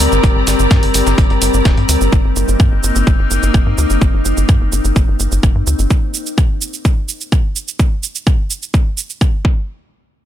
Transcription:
Already playing: ambient pad G3 C4 A#4, string section G4 D5 A#5
0.00 closed hi-hat
0.12 analog synth bass G1, snare, shaker
0.24 analog synth bass G1, kick, closed hi-hat, shaker
0.36 analog synth bass G1
0.47 analog synth bass G1, snare, closed hi-hat, open hi-hat, shaker
0.59 analog synth bass G1, shaker
0.71 analog synth bass G2, kick, snare, closed hi-hat, shaker
0.83 analog synth bass G1, open hi-hat
0.94 analog synth bass G1, closed hi-hat, open hi-hat, shaker
1.07 analog synth bass G1, snare, shaker
1.18 analog synth bass G1, kick, closed hi-hat, shaker
1.30 analog synth bass G1, closed hi-hat
1.42 analog synth bass G1, closed hi-hat, open hi-hat, shaker
1.54 analog synth bass G1, shaker
1.65 analog synth bass D1, kick, snare, closed hi-hat, shaker
1.77 analog synth bass G2, closed hi-hat
1.89 analog synth bass D2, closed hi-hat, open hi-hat, shaker
2.01 analog synth bass G1, shaker
2.12 analog synth bass G1, ambient pad A#3 D#4, kick, shaker
2.25 analog synth bass G1
2.36 analog synth bass G1, shaker
2.48 analog synth bass G1, shaker
2.60 analog synth bass G2, kick, shaker
2.72 analog synth bass G1
2.83 analog synth bass G1, shaker
2.95 analog synth bass G1, shaker
3.07 analog synth bass G1, kick, shaker
3.19 analog synth bass G1
3.31 analog synth bass G1, shaker
3.43 analog synth bass G1, shaker
3.54 analog synth bass G1, kick, shaker
3.66 analog synth bass G2
3.78 analog synth bass D2, shaker
3.90 analog synth bass G1, shaker
4.01 analog synth bass G1, kick, shaker
4.14 analog synth bass G1
4.25 analog synth bass G1, shaker
4.37 analog synth bass G1, shaker
4.49 analog synth bass G2, kick, shaker
4.61 analog synth bass G1
4.72 analog synth bass G1, shaker
4.85 analog synth bass G1, shaker
4.96 analog synth bass G1, kick, shaker
5.08 analog synth bass G1
5.20 analog synth bass G1, shaker
5.32 analog synth bass G1, shaker
5.43 analog synth bass G1, kick, shaker
5.55 analog synth bass G2
5.67 analog synth bass D2, shaker
5.79 analog synth bass G1, shaker
5.91 kick, shaker
6.14 shaker
6.26 shaker
6.38 kick, shaker
6.61 shaker
6.74 shaker
6.85 kick, shaker
7.09 shaker
7.21 shaker
7.32 kick, shaker
7.56 shaker
7.68 shaker
7.79 kick, shaker
8.03 shaker
8.15 shaker
8.27 kick, shaker
8.50 shaker
8.62 shaker
8.74 kick, shaker
8.98 shaker
9.10 shaker
9.21 kick, shaker
9.45 kick

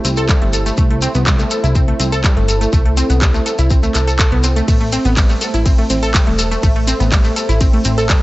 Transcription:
Already playing: analog synth pad E4 G4 C5
0.05 analog synth bass C2, synth arpeggio sound C4, closed hi-hat, shekere
0.17 synth arpeggio sound A4, closed hi-hat, shekere
0.28 synth arpeggio sound G3, kick, clap, closed hi-hat, shekere
0.42 analog synth bass G1, synth arpeggio sound A3, closed hi-hat
0.53 synth arpeggio sound A4, closed hi-hat, shekere
0.66 synth arpeggio sound A3, closed hi-hat, shekere
0.77 analog synth bass C2, synth arpeggio sound A3, analog synth pad A4, kick, closed hi-hat, shekere
0.90 synth arpeggio sound A3, closed hi-hat
1.02 synth arpeggio sound C4, closed hi-hat, shekere
1.14 analog synth bass C2, synth arpeggio sound B3, closed hi-hat, shekere
1.26 synth arpeggio sound G3, kick, clap, closed hi-hat, shekere
1.39 synth arpeggio sound A3, closed hi-hat, shekere
1.51 synth arpeggio sound A4, closed hi-hat, shekere
1.64 analog synth bass C2, synth arpeggio sound E4, closed hi-hat, shekere
1.75 synth arpeggio sound C4, kick, closed hi-hat, shekere
1.88 synth arpeggio sound A3, closed hi-hat
2.00 analog synth bass C2, synth arpeggio sound C4, closed hi-hat, shekere
2.12 synth arpeggio sound A4, closed hi-hat, shekere
2.24 synth arpeggio sound G3, kick, clap, closed hi-hat, shekere
2.37 analog synth bass G1, synth arpeggio sound A3, closed hi-hat
2.48 synth arpeggio sound A4, closed hi-hat, shekere
2.61 synth arpeggio sound A3, closed hi-hat, shekere
2.73 analog synth bass C2, synth arpeggio sound A3, kick, closed hi-hat, shekere
2.85 synth arpeggio sound A3, closed hi-hat
2.97 synth arpeggio sound C4, closed hi-hat, shekere
3.10 analog synth bass C2, synth arpeggio sound B3, closed hi-hat, shekere
3.22 synth arpeggio sound G3, kick, clap, closed hi-hat, shekere
3.34 synth arpeggio sound A3, closed hi-hat, shekere
3.46 synth arpeggio sound A4, closed hi-hat, shekere
3.58 analog synth bass C2, synth arpeggio sound E4, closed hi-hat, shekere
3.70 synth arpeggio sound C4, kick, closed hi-hat, shekere
3.83 synth arpeggio sound A3, closed hi-hat, shekere
3.95 analog synth bass C2, synth arpeggio sound A4, clap, closed hi-hat, shekere
4.07 synth arpeggio sound A4, closed hi-hat, shekere
4.19 synth arpeggio sound A4, kick, clap, closed hi-hat, shekere
4.32 analog synth bass C2, synth arpeggio sound B3, closed hi-hat
4.44 synth arpeggio sound C4, closed hi-hat, shekere
4.56 synth arpeggio sound A3, closed hi-hat, shekere
4.68 analog synth bass A1, synth arpeggio sound A3, analog synth pad A3 A4 C5 E5, kick, closed hi-hat, ride, shekere
4.81 synth arpeggio sound A3, closed hi-hat
4.92 synth arpeggio sound C4, closed hi-hat, shekere
5.05 analog synth bass A1, synth arpeggio sound B3, closed hi-hat, shekere
5.17 synth arpeggio sound G3, kick, clap, closed hi-hat, ride, shekere
5.30 synth arpeggio sound A3, closed hi-hat, shekere
5.41 synth arpeggio sound A4, closed hi-hat, shekere
5.54 analog synth bass A1, synth arpeggio sound E4, closed hi-hat, shekere
5.66 synth arpeggio sound C4, kick, closed hi-hat, ride, shekere
5.78 synth arpeggio sound A3, closed hi-hat
5.90 analog synth bass A1, synth arpeggio sound C4, closed hi-hat, shekere
6.03 synth arpeggio sound A4, closed hi-hat, shekere
6.14 synth arpeggio sound G3, kick, clap, closed hi-hat, ride, shekere
6.27 analog synth bass E1, synth arpeggio sound A3, closed hi-hat
6.39 synth arpeggio sound A4, closed hi-hat, shekere
6.51 synth arpeggio sound A3, closed hi-hat, shekere
6.63 analog synth bass A1, synth arpeggio sound A3, kick, closed hi-hat, ride, shekere
6.76 synth arpeggio sound A3, closed hi-hat
6.87 synth arpeggio sound C4, closed hi-hat, shekere
7.00 analog synth bass A1, synth arpeggio sound B3, closed hi-hat, shekere
7.12 synth arpeggio sound G3, kick, clap, closed hi-hat, ride, shekere
7.24 synth arpeggio sound A3, closed hi-hat, shekere
7.36 synth arpeggio sound A4, closed hi-hat, shekere
7.49 analog synth bass A1, synth arpeggio sound E4, closed hi-hat, shekere
7.61 synth arpeggio sound C4, kick, closed hi-hat, ride, shekere
7.73 synth arpeggio sound A3, closed hi-hat
7.85 analog synth bass A1, synth arpeggio sound C4, closed hi-hat, shekere
7.98 synth arpeggio sound A4, closed hi-hat, shekere
8.09 synth arpeggio sound G3, kick, clap, closed hi-hat, ride, shekere

